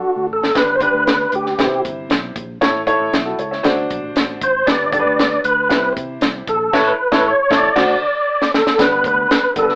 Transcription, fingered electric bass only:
0.16 0.27 D2 medium
0.29 0.40 A1 medium
0.41 0.52 G#1 medium
0.55 0.87 G1 loud
0.94 1.25 D2 medium
1.33 1.54 D2 medium
1.58 1.79 C3 loud
1.84 2.05 G1 medium
2.09 2.30 B1 loud
2.36 2.57 A#1 loud
2.61 2.82 A1 loud
3.00 3.10 A1 medium
3.13 3.34 B1 loud
3.38 3.59 C#2 medium
3.64 3.85 D2 medium
3.91 4.01 B1 medium
4.02 4.13 A1 loud
4.15 4.37 A1 medium
4.42 4.63 G#1 loud
4.67 4.99 G1 loud
5.05 5.37 D2 medium
5.44 5.72 D2 medium
5.71 5.92 C2 loud
5.96 6.17 C3 medium
6.21 6.42 C2 loud
6.47 6.68 A#1 loud
7.12 7.29 A1 loud
7.50 7.68 A1 loud
7.76 7.94 D2 loud
8.79 9.00 G1 loud
9.04 9.25 D2 medium
9.43 muted fingered electric bass stroke soft
9.56 9.75 G1 medium

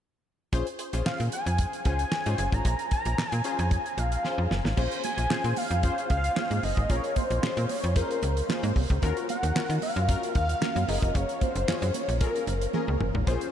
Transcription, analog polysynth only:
0.53 0.66 C#4 loud
0.53 0.66 F4 medium
0.53 0.66 G#4 medium
0.53 0.66 C5 loud
0.79 0.86 G#4 loud
0.79 0.86 C5 loud
0.93 1.35 C#4 medium
0.93 1.35 F4 medium
0.93 1.35 G#4 medium
0.93 1.35 C5 medium
1.85 2.04 C#4 medium
1.85 2.04 F4 medium
1.85 2.04 G#4 medium
1.85 2.05 C5 medium
2.26 2.74 C#4 medium
2.26 2.74 F4 medium
2.26 2.75 G#4 medium
2.26 2.75 C5 medium
3.32 3.38 G#4 medium
3.32 3.38 C5 medium
3.44 3.82 C#4 medium
3.44 3.82 F4 medium
3.44 3.82 G#4 medium
3.44 3.82 C5 loud
4.24 4.49 C#4 medium
4.24 4.49 F4 medium
4.24 4.49 G#4 medium
4.24 4.49 C5 medium
4.77 5.02 C#4 medium
4.77 5.02 F4 medium
4.77 5.02 G#4 medium
4.77 5.02 C5 loud
5.30 5.55 C#4 medium
5.30 5.55 F4 medium
5.30 5.55 G#4 medium
5.30 5.55 C5 medium
5.83 6.08 C#4 medium
5.83 6.08 F4 medium
5.83 6.08 G#4 medium
5.83 6.08 C5 medium
6.36 6.61 C#4 medium
6.36 6.61 F4 medium
6.36 6.61 G#4 medium
6.36 6.61 C5 medium
6.90 7.14 C#4 medium
6.90 7.14 F4 medium
6.90 7.14 G#4 medium
6.90 7.15 A#4 medium
7.43 7.67 C#4 medium
7.43 7.67 F4 medium
7.43 7.67 G#4 medium
7.43 7.68 C5 medium
7.96 8.20 C#4 medium
7.96 8.20 F4 medium
7.96 8.21 G#4 medium
7.96 8.21 C5 loud
8.49 8.74 C#4 medium
8.49 8.74 F4 medium
8.49 8.74 G#4 medium
8.49 8.74 C5 medium
9.02 9.27 C#4 medium
9.02 9.27 F4 medium
9.02 9.27 F#4 medium
9.02 9.27 A#4 loud
9.55 9.80 C#4 medium
9.55 9.80 F4 medium
9.55 9.80 F#4 medium
9.55 9.80 A#4 medium
10.08 10.33 C#4 medium
10.08 10.33 F4 medium
10.08 10.33 F#4 medium
10.08 10.33 A#4 medium
10.61 10.86 C#4 medium
10.61 10.86 F4 medium
10.61 10.86 F#4 medium
10.61 10.86 A#4 medium
10.88 11.53 C#4 medium
10.88 11.53 F4 medium
10.88 11.53 G#4 medium
10.88 11.53 A#4 medium
11.68 11.92 C#4 medium
11.68 11.92 F4 medium
11.68 11.92 G#4 medium
11.68 11.92 C#5 medium
12.21 12.45 C#4 medium
12.21 12.45 F4 medium
12.21 12.45 G#4 medium
12.21 12.46 A#4 medium
12.74 12.98 C#4 medium
12.74 12.98 F4 medium
12.74 12.99 G#4 medium
12.74 12.99 A#4 medium
13.27 13.51 C#4 medium
13.27 13.52 F4 medium
13.27 13.52 G#4 medium
13.27 13.52 C5 loud

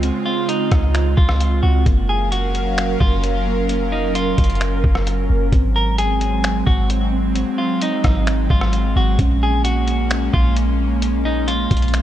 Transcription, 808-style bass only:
0.00 0.11 C#2 loud
0.72 1.16 C#2 loud
1.18 1.61 C#2 loud
1.63 1.85 C#2 loud
1.86 2.97 F#1 loud
3.01 4.34 F#1 loud
4.38 4.82 F#1 loud
4.84 5.28 F#1 loud
5.30 5.52 F#1 loud
5.53 6.63 G#1 loud
6.67 7.44 G#1 loud
8.04 8.48 G#1 loud
8.50 8.94 G#1 loud
8.96 9.18 G#1 loud
9.19 10.29 A#1 loud
10.34 11.67 A#1 loud
11.71 12.02 A#1 loud

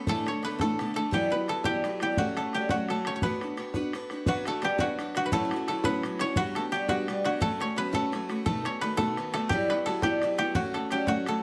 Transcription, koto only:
0.00 0.98 F#4 medium
0.00 0.44 B4 medium
0.00 0.28 C#5 medium
0.09 0.61 A4 loud
0.28 1.94 C#5 medium
0.45 1.31 B4 medium
0.61 0.96 A4 medium
0.96 1.49 A4 medium
1.14 1.65 G4 medium
1.32 3.09 B4 medium
1.49 2.36 A4 medium
1.65 2.02 G4 loud
2.03 2.24 G4 medium
2.18 2.60 F#4 medium
2.37 2.90 A4 medium
2.54 2.76 G4 medium
2.70 4.28 F#4 medium
2.90 4.47 A4 medium
3.07 3.15 C#5 medium
3.16 4.81 C#5 medium
3.23 5.01 B4 medium
4.28 4.71 F#4 medium
4.48 5.32 A4 medium
4.64 4.86 G4 medium
4.80 5.16 F#4 loud
5.17 6.37 F#4 medium
5.26 5.84 B4 medium
5.33 5.68 A4 loud
5.68 6.56 A4 medium
5.85 7.62 B4 loud
6.21 7.61 C#5 loud
6.37 6.78 F#4 loud
6.56 6.62 A4 medium
6.72 6.95 G4 medium
6.89 7.25 F#4 loud
7.25 9.37 F#4 medium
7.42 7.94 A4 loud
7.61 8.65 C#5 medium
7.78 8.81 B4 medium
7.95 8.45 A4 medium
8.46 8.97 A4 medium
8.66 10.31 C#5 medium
8.81 9.69 B4 medium
8.97 9.33 A4 loud
9.34 9.85 A4 medium
9.49 10.03 G4 medium
9.70 11.43 B4 medium
9.86 10.74 A4 medium
10.03 10.38 G4 loud
10.39 10.61 G4 loud
10.55 10.98 F#4 loud
10.74 11.28 A4 medium
10.92 11.14 G4 medium
11.08 11.43 F#4 loud
11.28 11.43 A4 medium

